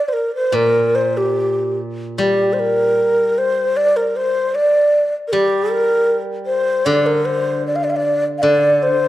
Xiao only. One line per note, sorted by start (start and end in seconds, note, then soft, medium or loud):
0.08 0.14 C5 medium
0.13 0.34 A#4 medium
0.35 0.57 C5 medium
0.55 0.97 A#4 medium
0.95 1.19 C5 medium
1.17 1.79 G4 medium
2.18 2.55 G4 medium
2.53 2.61 C5 medium
2.59 3.40 A#4 medium
3.38 3.78 C5 medium
3.77 3.98 D5 medium
3.97 4.18 A#4 medium
4.16 4.56 C5 medium
4.55 5.14 D5 medium
5.28 5.34 A#4 medium
5.32 5.72 G4 medium
5.71 6.22 A#4 medium
6.46 6.87 C5 medium
6.86 7.08 D5 medium
7.06 7.27 A#4 medium
7.25 7.65 C5 medium
7.67 7.77 D5 medium
7.76 7.85 F5 medium
7.84 7.91 D5 medium
7.90 7.98 F5 medium
7.96 8.24 D5 medium
8.38 8.44 F5 medium
8.42 8.84 D5 medium
8.83 9.08 C5 medium